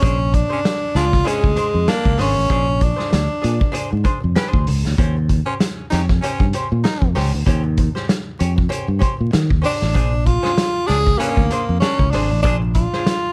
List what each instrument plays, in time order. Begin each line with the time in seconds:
Already playing: tenor saxophone C#4
0.02 fingered electric bass A#1, hollow-body jazz guitar D4 G#4 C5, kick, closed hi-hat
0.18 muted hollow-body jazz guitar stroke
0.33 tenor saxophone D4, muted hollow-body jazz guitar stroke, kick, closed hi-hat
0.49 baritone saxophone C#4, hollow-body jazz guitar D4 G#4 C5
0.64 muted hollow-body jazz guitar stroke, snare, closed hi-hat
0.95 fingered electric bass C#2, hollow-body jazz guitar D4 G#4 D5, baritone saxophone D4, tenor saxophone F4, snare, closed hi-hat
1.12 muted hollow-body jazz guitar stroke, kick, snare
1.24 tenor saxophone G#3, baritone saxophone C#4, hollow-body jazz guitar D4 G#4 C5, closed hi-hat
1.41 fingered electric bass D2, muted hollow-body jazz guitar stroke, kick
1.56 hollow-body jazz guitar D4 G#4 C5, closed hi-hat
1.73 fingered electric bass F2, muted hollow-body jazz guitar stroke
1.88 tenor saxophone A#3, baritone saxophone D4, snare, closed hi-hat
2.04 fingered electric bass C#2, muted hollow-body jazz guitar stroke, kick
2.18 fingered electric bass G#1, tenor saxophone C#4, hollow-body jazz guitar D4 G#4 C5, snare, open hi-hat
2.36 fingered electric bass A1, muted hollow-body jazz guitar stroke
2.50 fingered electric bass A#1, hollow-body jazz guitar D4 G#4 C5, kick, closed hi-hat
2.67 muted hollow-body jazz guitar stroke
2.80 tenor saxophone D4, muted hollow-body jazz guitar stroke, kick, closed hi-hat
2.96 hollow-body jazz guitar D4 G#4 C5, snare
3.10 fingered electric bass D2, muted hollow-body jazz guitar stroke, snare, closed hi-hat
3.42 fingered electric bass A#2, hollow-body jazz guitar D4 G#4 D5, closed hi-hat
3.60 muted hollow-body jazz guitar stroke, kick
3.72 hollow-body jazz guitar D4 G#4 C5, closed hi-hat
3.91 fingered electric bass G#2, muted hollow-body jazz guitar stroke
4.04 hollow-body jazz guitar D4 G#4 C5, kick, closed hi-hat
4.20 fingered electric bass F2, muted hollow-body jazz guitar stroke
4.35 hollow-body jazz guitar C#4 G4 B4, snare, closed hi-hat
4.47 hollow-body jazz guitar D4 G#4 C5
4.53 fingered electric bass D2, kick
4.67 fingered electric bass C#2, muted hollow-body jazz guitar stroke, open hi-hat
4.85 fingered electric bass D2, muted hollow-body jazz guitar stroke, snare
4.98 fingered electric bass D#2, hollow-body jazz guitar C#4 G4 C5, kick, closed hi-hat
5.17 muted hollow-body jazz guitar stroke
5.29 muted hollow-body jazz guitar stroke, kick, closed hi-hat
5.46 baritone saxophone C#4, hollow-body jazz guitar C#4 G4 C5
5.60 muted hollow-body jazz guitar stroke, snare, closed hi-hat
5.90 fingered electric bass F2, hollow-body jazz guitar C#4 G4 C#5, baritone saxophone D#4, snare, closed hi-hat
6.09 muted hollow-body jazz guitar stroke, kick, snare
6.21 baritone saxophone C#4, hollow-body jazz guitar C#4 G4 C5, closed hi-hat
6.40 fingered electric bass G2, muted hollow-body jazz guitar stroke, kick
6.53 hollow-body jazz guitar C#4 G4 C5, closed hi-hat
6.72 fingered electric bass A#2, muted hollow-body jazz guitar stroke
6.83 baritone saxophone D#4, snare, closed hi-hat
7.01 fingered electric bass F2, muted hollow-body jazz guitar stroke, kick
7.15 fingered electric bass C#2, hollow-body jazz guitar C#4 G4 C5, snare, open hi-hat
7.33 fingered electric bass D2, muted hollow-body jazz guitar stroke
7.46 fingered electric bass D#2, hollow-body jazz guitar C#4 G4 C5, kick, closed hi-hat
7.63 muted hollow-body jazz guitar stroke
7.77 muted hollow-body jazz guitar stroke, kick, closed hi-hat
7.95 hollow-body jazz guitar C#4 G4 C5, snare
8.08 muted hollow-body jazz guitar stroke, snare, closed hi-hat
8.39 fingered electric bass F2, hollow-body jazz guitar C#4 G4 C#5, closed hi-hat
8.56 muted hollow-body jazz guitar stroke, kick
8.69 hollow-body jazz guitar C#4 G4 C5, closed hi-hat
8.87 fingered electric bass G2, muted hollow-body jazz guitar stroke
8.99 hollow-body jazz guitar C#4 G4 C5, kick, closed hi-hat
9.17 fingered electric bass A#2, muted hollow-body jazz guitar stroke
9.32 fingered electric bass D#3, muted hollow-body jazz guitar stroke, snare, closed hi-hat
9.50 fingered electric bass D#2, kick
9.62 hollow-body jazz guitar C#4 G4 C5, tenor saxophone D4, open hi-hat
9.81 fingered electric bass A1, muted hollow-body jazz guitar stroke, snare
9.94 fingered electric bass A#1, hollow-body jazz guitar D4 G#4 C5, kick, closed hi-hat
10.13 muted hollow-body jazz guitar stroke
10.26 tenor saxophone F4, muted hollow-body jazz guitar stroke, kick, closed hi-hat
10.43 baritone saxophone C#4, hollow-body jazz guitar D4 G#4 C5, snare
10.57 muted hollow-body jazz guitar stroke, snare, closed hi-hat
10.87 fingered electric bass C#2, baritone saxophone D4, hollow-body jazz guitar D4 G#4 D5, tenor saxophone G#4, snare, open hi-hat
11.06 muted hollow-body jazz guitar stroke, kick, snare
11.18 tenor saxophone A#3, baritone saxophone C#4, hollow-body jazz guitar D4 G#4 C5, closed hi-hat
11.37 fingered electric bass D2, muted hollow-body jazz guitar stroke, kick
11.50 hollow-body jazz guitar D4 G#4 C5, closed hi-hat
11.69 fingered electric bass F2, muted hollow-body jazz guitar stroke
11.80 tenor saxophone C#4, baritone saxophone D4, snare, closed hi-hat
11.99 fingered electric bass C#2, muted hollow-body jazz guitar stroke, kick
12.10 fingered electric bass G#1, tenor saxophone D4, hollow-body jazz guitar D4 G#4 C5, snare, open hi-hat
12.30 fingered electric bass A1, muted hollow-body jazz guitar stroke
12.42 fingered electric bass A#1, tenor saxophone D4, hollow-body jazz guitar D4 G#4 C5, kick, closed hi-hat
12.62 muted hollow-body jazz guitar stroke
12.75 tenor saxophone F4, muted hollow-body jazz guitar stroke, kick, closed hi-hat
12.93 hollow-body jazz guitar D4 G#4 C5, snare
13.06 muted hollow-body jazz guitar stroke, snare, closed hi-hat